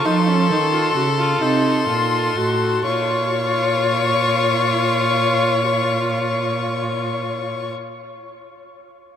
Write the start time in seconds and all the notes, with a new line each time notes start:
Already playing: A4
0.05 F3 D#4 C6
0.28 C#4
0.49 D#3 D#4
0.73 F4
0.95 C#3 F#4
1.18 F4
1.41 C3 D#4 C6
1.88 A#2 F4
2.37 A2 F#4
2.85 A#2 F4 C#5 C#6